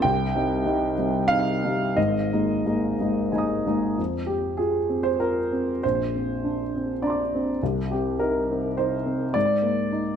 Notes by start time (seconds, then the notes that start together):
0.02 C2 G5
0.35 G3 C4 D#4
0.65 G3 C4 D#4
0.98 G3 C4 D#4
1.28 G3 C4 D#4 F5
1.64 G3 C4 D#4
1.97 G#1 G#2 D#5
2.33 G#3 A#3 D#4
2.66 G#3 A#3 D#4
3.01 G#3 A#3 D#4
3.32 G#3 A#3 D#4 G#5 A#5
3.38 D#6
3.67 G#3 A#3 D#4
3.97 F2
4.26 C4 G4
4.57 F4 G#4
4.89 C4
5.03 C5
5.20 F4 A#4
5.52 C4
5.83 A#1 C5
6.15 C4
6.44 D4
6.75 C4
7.02 D4 D5 A#5
7.07 C6 D6
7.35 C4
7.63 C2
7.91 C4 G4
8.19 D#4 A#4
8.51 C4
8.77 D#4 C5
9.06 C4
9.34 G#2 D5
9.62 A#3
9.92 D#4